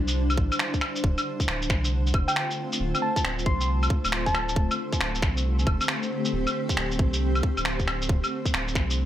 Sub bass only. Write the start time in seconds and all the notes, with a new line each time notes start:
Already playing: C2
0.38 A1
1.04 D1
1.48 D1
1.70 C2
2.14 F1
2.80 D1
3.24 D1
3.46 C2
4.05 D1
4.56 D1
5.01 D1
5.22 C2
5.67 F1
6.33 D1
6.77 D1
6.99 C2
7.57 D1
8.09 D1
8.54 D1
8.75 C2